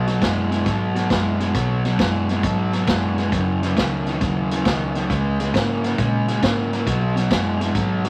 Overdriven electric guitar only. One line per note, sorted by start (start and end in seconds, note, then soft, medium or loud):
0.07 0.20 B2 medium
0.07 0.21 F#3 medium
0.22 0.49 B2 medium
0.22 0.49 G#3 loud
0.51 0.65 B2 medium
0.51 0.65 G#3 medium
0.66 0.93 B2 medium
0.66 0.93 F#3 medium
0.95 1.09 B2 medium
0.95 1.09 F#3 medium
1.11 1.38 B2 medium
1.11 1.38 G#3 loud
1.40 1.53 B2 medium
1.40 1.54 G#3 medium
1.55 1.82 B2 medium
1.55 1.82 F#3 loud
1.86 1.98 B2 medium
1.86 1.98 F#3 medium
1.99 2.26 B2 medium
1.99 2.27 G#3 loud
2.30 2.42 B2 medium
2.30 2.43 G#3 medium
2.44 2.71 B2 medium
2.44 2.71 F#3 medium
2.74 2.87 B2 medium
2.74 2.87 F#3 medium
2.88 3.15 B2 medium
2.88 3.16 G#3 medium
3.18 3.31 B2 medium
3.18 3.31 G#3 medium
3.33 3.60 F#2 medium
3.33 3.60 C#3 medium
3.63 3.75 F#2 medium
3.63 3.76 C#3 medium
3.77 4.04 F#2 medium
3.77 4.04 D#3 medium
4.08 4.20 F#2 medium
4.08 4.20 D#3 medium
4.21 4.48 F#2 medium
4.21 4.49 C#3 medium
4.52 4.64 F#2 medium
4.52 4.65 C#3 medium
4.66 4.93 F#2 medium
4.66 4.93 D#3 medium
4.96 5.09 F#2 medium
4.96 5.09 D#3 medium
5.10 5.37 C#3 medium
5.10 5.37 G#3 medium
5.40 5.52 C#3 medium
5.40 5.53 G#3 medium
5.54 5.81 C#3 medium
5.54 5.81 A#3 medium
5.83 5.97 C#3 medium
5.83 5.97 A#3 medium
5.98 6.25 C#3 medium
5.98 6.25 G#3 medium
6.28 6.41 C#3 medium
6.28 6.41 G#3 medium
6.43 6.70 C#3 medium
6.43 6.70 A#3 medium
6.73 6.86 C#3 medium
6.73 6.86 A#3 medium
6.87 7.14 B2 medium
6.87 7.14 F#3 medium
7.16 7.29 B2 medium
7.16 7.29 F#3 medium
7.30 7.57 B2 medium
7.30 7.58 G#3 loud
7.60 7.73 B2 medium
7.60 7.73 G#3 medium
7.74 8.02 B2 medium
7.74 8.02 F#3 medium
8.05 8.09 B2 medium
8.05 8.09 F#3 medium